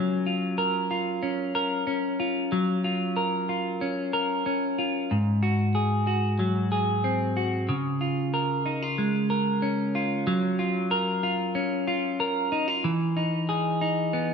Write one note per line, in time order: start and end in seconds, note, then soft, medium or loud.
0.00 2.52 F#3 medium
0.00 1.22 C#4 soft
0.00 0.26 F4 medium
0.00 0.58 A#4 medium
0.26 0.90 F4 medium
0.58 1.54 A#4 medium
0.91 2.19 F4 soft
1.23 1.86 C#4 medium
1.55 3.15 A#4 medium
1.87 3.80 C#4 medium
2.20 2.83 F4 medium
2.52 5.14 F#3 medium
2.84 3.48 F4 medium
3.17 4.12 A#4 medium
3.49 4.77 F4 soft
3.81 4.45 C#4 medium
4.13 5.16 A#4 medium
4.46 5.17 C#4 medium
4.79 5.17 F4 medium
5.11 7.69 G#2 medium
5.43 6.06 F#4 medium
5.75 6.71 G#4 medium
6.07 7.35 F#4 medium
6.39 7.75 F#3 medium
6.72 8.33 G#4 medium
7.04 7.75 C4 medium
7.37 7.75 F#4 medium
7.69 10.26 C#3 medium
8.01 8.65 F4 medium
8.34 9.30 A#4 medium
8.66 8.82 D#4 medium
8.82 9.94 F4 soft
8.98 10.26 G#3 medium
9.30 10.91 A#4 medium
9.62 11.55 C#4 medium
9.95 10.59 F4 medium
10.27 12.85 F#3 medium
10.59 11.22 F4 medium
10.91 12.19 A#4 medium
11.23 11.86 F4 medium
11.55 12.91 C#4 medium
11.88 12.52 F4 medium
12.20 12.91 A#4 medium
12.52 12.68 D#4 medium
12.68 12.90 F4 medium
12.84 14.34 E3 medium
13.17 13.81 D#4 medium
13.49 14.34 G#4 medium
13.81 14.34 D#4 medium
14.13 14.34 B3 medium